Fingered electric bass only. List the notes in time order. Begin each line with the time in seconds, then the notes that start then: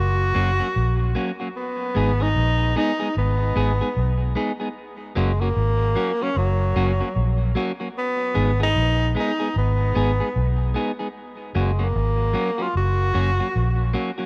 Already playing: F#1
0.36 F#1
0.76 A#1
1.96 G#1
2.36 A#1
3.17 G#1
3.56 G#1
3.97 B1
5.17 F#1
5.56 G#1
6.36 F#1
6.76 F#1
7.16 A#1
8.36 G#1
8.76 A#1
9.56 G#1
9.96 G#1
10.36 B1
11.55 F#1
11.96 G#1
12.75 F#1
13.15 F#1
13.56 A#1